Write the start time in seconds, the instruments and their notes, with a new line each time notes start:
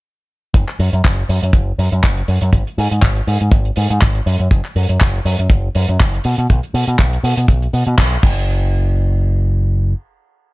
0.54 picked electric bass F#1, kick, closed hi-hat
0.68 clap
0.79 picked electric bass F#2, open hi-hat
0.93 picked electric bass F#2, closed hi-hat
1.04 picked electric bass F#1, kick, clap, closed hi-hat
1.29 picked electric bass F#2, open hi-hat
1.43 picked electric bass F#2, closed hi-hat
1.53 picked electric bass F#1, kick, closed hi-hat
1.78 picked electric bass F#2, open hi-hat
1.92 picked electric bass F#2, closed hi-hat
2.03 picked electric bass F#1, kick, clap, closed hi-hat
2.17 closed hi-hat
2.28 picked electric bass F#2, open hi-hat
2.41 picked electric bass F#2, closed hi-hat
2.53 picked electric bass G#1, kick, closed hi-hat
2.67 closed hi-hat
2.78 picked electric bass G#2, open hi-hat
2.91 picked electric bass G#2, closed hi-hat
3.02 picked electric bass G#1, kick, clap, closed hi-hat
3.16 closed hi-hat
3.27 picked electric bass G#2, open hi-hat
3.41 picked electric bass G#2, closed hi-hat
3.52 picked electric bass G#1, kick, closed hi-hat
3.65 closed hi-hat
3.76 picked electric bass G#2, open hi-hat
3.90 picked electric bass G#2, closed hi-hat
4.01 picked electric bass G#1, kick, clap, closed hi-hat
4.15 closed hi-hat
4.26 picked electric bass F#2, open hi-hat
4.39 picked electric bass F#2, closed hi-hat
4.51 picked electric bass F#1, kick, closed hi-hat
4.65 clap
4.76 picked electric bass F#2, open hi-hat
4.89 picked electric bass F#2, closed hi-hat
5.01 picked electric bass F#1, kick, clap, closed hi-hat
5.25 picked electric bass F#2, open hi-hat
5.39 picked electric bass F#2, closed hi-hat
5.50 picked electric bass F#1, kick, closed hi-hat
5.75 picked electric bass F#2, open hi-hat
5.88 picked electric bass F#2, closed hi-hat
6.00 picked electric bass F#1, kick, clap, closed hi-hat
6.14 closed hi-hat
6.24 picked electric bass B2, open hi-hat
6.38 picked electric bass B2, closed hi-hat
6.50 picked electric bass B1, kick, closed hi-hat
6.63 closed hi-hat
6.74 picked electric bass B2, open hi-hat
6.88 picked electric bass B2, closed hi-hat
6.99 picked electric bass B1, kick, clap, closed hi-hat
7.13 closed hi-hat
7.23 picked electric bass B2, open hi-hat
7.37 picked electric bass B2, closed hi-hat
7.48 picked electric bass B1, kick, closed hi-hat
7.62 closed hi-hat
7.73 picked electric bass B2, open hi-hat
7.87 picked electric bass B2, closed hi-hat
7.98 picked electric bass B1, kick, clap, closed hi-hat
8.12 closed hi-hat
8.23 picked electric bass F#1, kick, crash